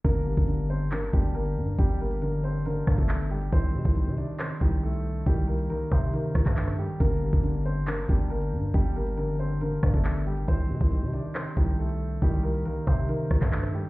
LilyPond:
<<
  \new Staff \with { instrumentName = "Grand piano" } { \time 4/4 \key g \minor \tempo 4 = 138 <bes bes'>4. <c' c''>8 <bes bes'>8 <g g'>8 <bes bes'>4 | <g g'>8 <bes bes'>8 <bes bes'>8 <c' c''>8 <bes bes'>8. <a a'>8. <g g'>8 | <c' c''>4. <d' d''>8 <c' c''>8 <g g'>8 <a a'>4 | <g g'>8 <bes bes'>8 <bes bes'>8 <c' c''>8 <bes bes'>8. <a a'>8. <g g'>8 |
<bes bes'>4. <c' c''>8 <bes bes'>8 <g g'>8 <bes bes'>4 | <g g'>8 <bes bes'>8 <bes bes'>8 <c' c''>8 <bes bes'>8. <a a'>8. <g g'>8 | <c' c''>4. <d' d''>8 <c' c''>8 <g g'>8 <a a'>4 | <g g'>8 <bes bes'>8 <bes bes'>8 <c' c''>8 <bes bes'>8. <a a'>8. <g g'>8 | }
  \new Staff \with { instrumentName = "Felt piano" } { \clef bass \time 4/4 \key g \minor d8 g8 d4 d8 d'4. | d8 g8 d4 d8 d'4. | ees8 g8 ees4 ees8 ees'4. | ees8 g8 ees4 ees8 ees'4. |
d8 g8 d4 d8 d'4. | d8 g8 d4 d8 d'4. | ees8 g8 ees4 ees8 ees'4. | ees8 g8 ees4 ees8 ees'4. | }
  \new Staff \with { instrumentName = "808-style bass" } { \clef bass \time 4/4 \key g \minor g,,8. g,,4.~ g,,16 g,,4 g,8 | g,,2~ g,,8 g,16 g,,4~ g,,16 | c,8 c16 c,8 c8 r8. c,4. | c,4 r8 c4 c,16 g,8. r8 |
g,,8. g,,4.~ g,,16 g,,4 g,8 | g,,2~ g,,8 g,16 g,,4~ g,,16 | c,8 c16 c,8 c8 r8. c,4. | c,4 r8 c4 c,16 g,8. r8 | }
  \new DrumStaff \with { instrumentName = "Drums" } \drummode { \time 4/4 <hh bd>8. <hh bd>16 hh8 hh8 <hc hh>8 <hh bd>8 r16 hh8. | <hh bd>8. hh16 hh8 hh8 hh8 <bd ss>16 <hh bd>16 hc8 hh16 hh16 | <hh bd>8. <hh bd>16 hh8 hh8 <hc hh>8 <hh bd>8 r16 hh8. | <hh bd>8. hh16 hh8 <hh bd>8 hh8 <bd ss>16 <hc hh bd>16 hc16 ss16 hho16 hh16 |
<hh bd>8. <hh bd>16 hh8 hh8 <hc hh>8 <hh bd>8 r16 hh8. | <hh bd>8. hh16 hh8 hh8 hh8 <bd ss>16 <hh bd>16 hc8 hh16 hh16 | <hh bd>8. <hh bd>16 hh8 hh8 <hc hh>8 <hh bd>8 r16 hh8. | <hh bd>8. hh16 hh8 <hh bd>8 hh8 <bd ss>16 <hc hh bd>16 hc16 ss16 hho16 hh16 | }
>>